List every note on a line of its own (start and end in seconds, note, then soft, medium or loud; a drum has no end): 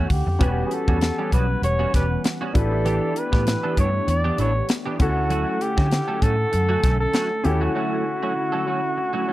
0.00 0.37 D3 medium
0.00 0.37 A3 medium
0.00 0.38 C#4 medium
0.00 2.51 F#5 medium
0.05 0.14 F#4 medium
0.10 0.22 D2 medium
0.10 0.67 G4 medium
0.10 muted clean electric guitar stroke soft
0.10 kick medium
0.10 open hi-hat medium
0.27 0.37 F2 medium
0.27 muted clean electric guitar stroke soft
0.39 0.63 E1 loud
0.39 4.96 E3 medium
0.39 2.52 G3 medium
0.39 0.69 G3 medium
0.39 4.96 B3 medium
0.39 0.69 B3 medium
0.39 2.50 C#4 medium
0.39 2.53 C#4 medium
0.39 0.69 C#4 medium
0.39 2.51 F#4 medium
0.39 0.70 F#4 medium
0.39 2.51 G4 medium
0.39 2.51 B4 medium
0.39 kick loud
0.39 closed hi-hat medium
0.66 0.75 G#4 medium
0.71 1.33 A4 loud
0.71 muted clean electric guitar stroke soft
0.71 closed hi-hat medium
0.88 1.10 E2 medium
0.88 0.99 G3 soft
0.88 0.99 B3 soft
0.88 0.98 C#4 medium
0.88 0.98 F#4 medium
0.88 kick medium
1.01 muted clean electric guitar stroke soft
1.01 snare medium
1.01 closed hi-hat medium
1.18 1.32 G3 medium
1.18 1.32 B3 medium
1.18 1.32 C#4 medium
1.18 1.32 G4 medium
1.32 1.54 B1 medium
1.32 1.45 G3 medium
1.32 1.45 B3 medium
1.32 1.45 C#4 medium
1.32 1.46 F#4 medium
1.32 1.62 B4 medium
1.32 kick medium
1.32 closed hi-hat medium
1.62 1.84 E1 loud
1.62 1.92 C#5 loud
1.62 muted clean electric guitar stroke soft
1.62 closed hi-hat medium
1.79 1.92 G3 medium
1.79 1.93 B3 medium
1.79 1.93 C#4 medium
1.79 1.93 F#4 medium
1.93 2.16 E1 medium
1.93 2.06 G3 medium
1.93 2.06 B3 medium
1.93 2.06 C#4 medium
1.93 2.06 G4 medium
1.93 2.23 B4 medium
1.93 kick medium
1.93 snare soft
1.93 closed hi-hat medium
2.11 muted clean electric guitar stroke soft
2.24 muted clean electric guitar stroke soft
2.24 snare loud
2.24 closed hi-hat medium
2.41 2.54 G3 medium
2.41 2.54 B3 medium
2.41 2.54 C#4 medium
2.41 2.54 F#4 medium
2.54 2.99 A1 medium
2.54 9.33 A3 medium
2.54 4.95 D4 medium
2.54 4.97 D4 medium
2.54 4.96 E4 medium
2.54 4.97 G4 medium
2.54 4.96 G4 medium
2.54 3.20 A4 medium
2.54 4.96 B4 medium
2.54 muted clean electric guitar stroke soft
2.54 kick loud
2.54 closed hi-hat medium
2.72 muted clean electric guitar stroke soft
2.85 3.14 E3 medium
2.85 3.14 B3 medium
2.85 3.14 D4 medium
2.85 3.14 G4 medium
2.85 closed hi-hat medium
3.16 3.79 B4 loud
3.16 closed hi-hat medium
3.32 3.55 A2 medium
3.32 3.44 E3 medium
3.32 3.43 B3 medium
3.32 3.43 D4 medium
3.32 3.43 G4 medium
3.32 kick medium
3.32 snare soft
3.47 muted clean electric guitar stroke soft
3.47 snare loud
3.47 closed hi-hat medium
3.63 3.76 E3 medium
3.63 3.76 B3 medium
3.63 3.76 D4 medium
3.63 3.77 A4 medium
3.77 3.99 G2 loud
3.77 3.89 E3 medium
3.77 3.90 B3 medium
3.77 3.90 D4 medium
3.77 3.90 G4 medium
3.77 4.11 C#5 loud
3.77 kick medium
3.77 closed hi-hat medium
4.07 4.30 E2 medium
4.07 4.40 D5 loud
4.07 muted clean electric guitar stroke soft
4.07 closed hi-hat medium
4.24 4.37 E3 medium
4.24 4.38 B3 medium
4.24 4.38 D4 medium
4.24 4.38 G4 medium
4.38 4.60 A1 medium
4.38 4.51 E3 medium
4.38 4.51 B3 medium
4.38 4.51 D4 medium
4.38 4.51 A4 medium
4.38 4.68 C#5 medium
4.38 closed hi-hat medium
4.55 muted clean electric guitar stroke soft
4.69 muted clean electric guitar stroke soft
4.69 snare loud
4.69 closed hi-hat medium
4.86 4.99 E3 medium
4.86 4.99 B3 medium
4.86 4.99 D4 medium
4.86 4.99 G4 medium
4.99 5.44 D2 medium
4.99 9.33 D3 medium
4.99 7.40 C#4 medium
4.99 9.33 C#4 medium
4.99 7.41 E4 medium
4.99 5.63 F#4 loud
4.99 7.42 A4 medium
4.99 7.42 F#5 medium
4.99 7.41 F#5 medium
4.99 kick loud
4.99 closed hi-hat medium
5.16 muted clean electric guitar stroke soft
5.30 5.58 F#3 medium
5.30 5.59 A3 medium
5.30 5.59 C#4 medium
5.30 5.59 F#4 medium
5.30 closed hi-hat medium
5.61 6.24 G4 loud
5.61 muted clean electric guitar stroke soft
5.61 closed hi-hat medium
5.77 5.99 D3 medium
5.77 5.88 F#3 soft
5.77 5.88 A3 medium
5.77 5.88 C#4 medium
5.77 5.88 F#4 medium
5.77 kick loud
5.77 snare soft
5.91 muted clean electric guitar stroke soft
5.91 snare loud
5.91 closed hi-hat medium
6.08 6.20 F#3 medium
6.08 6.21 A3 medium
6.08 6.21 C#4 medium
6.08 6.21 A4 medium
6.21 6.44 A2 medium
6.21 6.34 F#3 medium
6.21 6.34 A3 medium
6.21 6.35 C#4 medium
6.21 6.35 F#4 medium
6.21 7.00 A4 loud
6.21 kick medium
6.21 closed hi-hat medium
6.38 muted clean electric guitar stroke soft
6.52 6.75 F#2 medium
6.52 muted clean electric guitar stroke soft
6.52 closed hi-hat medium
6.69 6.82 F#3 medium
6.69 6.82 A3 medium
6.69 6.82 C#4 medium
6.69 6.82 F#4 medium
6.83 7.05 B1 medium
6.83 6.95 F#3 medium
6.83 6.96 A3 medium
6.83 6.96 C#4 medium
6.83 6.96 A4 medium
6.83 kick medium
6.83 snare soft
6.83 closed hi-hat medium
7.00 7.46 A4 loud
7.00 muted clean electric guitar stroke soft
7.13 7.29 F#3 medium
7.13 7.30 A3 medium
7.13 7.29 C#4 medium
7.13 7.29 F#4 medium
7.13 snare loud
7.13 closed hi-hat medium
7.30 muted clean electric guitar stroke soft
7.44 7.67 D#2 medium
7.44 9.33 C#4 medium
7.44 9.33 E4 medium
7.44 9.33 F#4 medium
7.44 7.63 G4 loud
7.44 9.33 A4 medium
7.44 muted clean electric guitar stroke soft
7.44 closed hi-hat medium
7.61 7.72 F#3 soft
7.61 7.72 A3 medium
7.61 7.72 C#4 medium
7.61 7.71 F#4 medium
7.61 9.33 F#4 loud
7.75 8.03 F#3 medium
7.75 8.04 A3 medium
7.75 8.04 C#4 medium
7.75 8.04 F#4 medium
8.22 8.33 F#3 medium
8.22 8.33 A3 medium
8.22 8.33 C#4 medium
8.22 8.33 F#4 medium
8.36 muted clean electric guitar stroke soft
8.52 8.65 F#3 medium
8.52 8.65 A3 medium
8.52 8.66 C#4 medium
8.52 8.66 A4 medium
8.66 8.79 F#3 medium
8.66 8.79 A3 medium
8.66 8.79 C#4 medium
8.66 8.80 F#4 medium
8.97 muted clean electric guitar stroke soft
9.13 9.26 F#3 medium
9.13 9.27 A3 medium
9.13 9.27 C#4 medium
9.13 9.27 F#4 medium
9.28 9.33 F#3 medium
9.28 9.33 A3 medium
9.28 9.33 C#4 medium
9.28 9.33 A4 medium